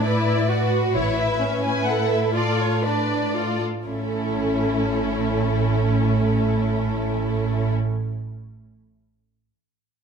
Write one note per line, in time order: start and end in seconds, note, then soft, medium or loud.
0.00 0.91 A2 soft
0.00 0.48 E4 soft
0.00 0.70 D5 soft
0.04 0.49 E4 soft
0.04 0.48 B4 soft
0.49 0.94 F#4 soft
0.49 2.31 B4 soft
0.94 1.37 A1 soft
0.94 3.61 A2 soft
0.94 1.40 E4 soft
0.94 1.15 C#5 medium
1.17 1.63 E5 medium
1.40 1.86 C#4 soft
1.40 1.64 C#4 soft
1.64 2.34 E4 soft
1.64 1.86 G#5 medium
1.86 2.33 A4 soft
1.86 2.10 F#5 medium
2.11 2.19 E5 soft
2.33 2.82 F4 soft
2.33 2.84 F4 soft
2.33 2.83 A4 soft
2.33 2.58 D5 soft
2.60 2.84 C#5 soft
2.83 3.33 D4 soft
2.83 3.34 D4 soft
2.83 3.34 B4 soft
2.83 3.60 D5 soft
3.34 3.60 F4 soft
3.34 3.64 F4 soft
3.34 3.64 A4 soft
3.86 7.73 A1 soft
3.86 7.73 A2 soft
3.86 7.72 A3 soft
3.86 7.73 C#4 soft
3.86 7.73 E4 soft
3.86 7.73 A4 soft